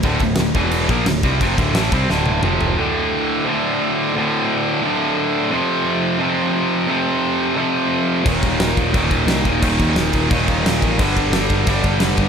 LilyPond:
<<
  \new Staff \with { instrumentName = "Distorted electric guitar" } { \clef bass \time 4/4 \key d \phrygian \tempo 4 = 175 <d, a, d>8 <d, a,>8 <d, a,>8 <e, b, e>4 <bes, f bes>8 <d, a,>8 <c g c'>8 | <f, c f>8 <d, a, d>8 <a, e a>8 <c g c'>8 <d, a, d>4 <f, c f>4 | <d, a, d>2 <d, a, d>2 | <d, a, d>2 <d, a, d>2 |
<f, c f>2 <f, c f>2 | <f, c f>2 <f, c f>2 | <ees, bes, ees>2 <ees, bes, ees>2 | <ees, bes, ees>2 <ees, bes, ees>2 |
<g, d g>2 <g, d g>2 | }
  \new Staff \with { instrumentName = "Picked electric bass" } { \clef bass \time 4/4 \key d \phrygian d,,8 d,,8 d,,8 e,,4 bes,,8 d,,8 c,8 | f,,8 d,,8 a,,8 c,8 d,,4 f,,4 | r1 | r1 |
r1 | r1 | ees,,8 ees,,8 ees,,8 ees,,8 ees,,8 ees,,8 c,8 ees,,8 | ees,,8 ees,8 ees,,8 ees,,8 ees,,8 ees,,8 ees,,8 a,,8 |
g,,8 g,,8 g,,8 g,,8 g,,8 g,,8 f,,8 g,,8 | }
  \new DrumStaff \with { instrumentName = "Drums" } \drummode { \time 4/4 <cymc bd>8 <cymc bd>8 <cymc sn>8 <cymc bd>8 cymc8 <cymc bd>8 <cymc sn>8 <cymc bd>8 | <cymc bd>8 <cymc bd>8 <cymc sn>8 <cymc bd>8 sn8 tommh8 toml8 tomfh8 | r4 r4 r4 r4 | r4 r4 r4 r4 |
r4 r4 r4 r4 | r4 r4 r4 r4 | <cymc bd>8 <cymc bd>8 <cymc sn>8 <cymc bd>8 <cymc bd>8 <cymc bd>8 <cymc sn>8 <cymc bd>8 | <cymc bd>8 <cymc bd>8 <cymc sn>8 <cymc bd>8 <cymc bd>8 <cymc bd>8 <cymc sn>8 <cymc bd>8 |
<cymc bd>8 <cymc bd>8 <cymc sn>8 <cymc bd>8 <cymc bd>8 <cymc bd>8 <cymc sn>8 <cymc bd>8 | }
>>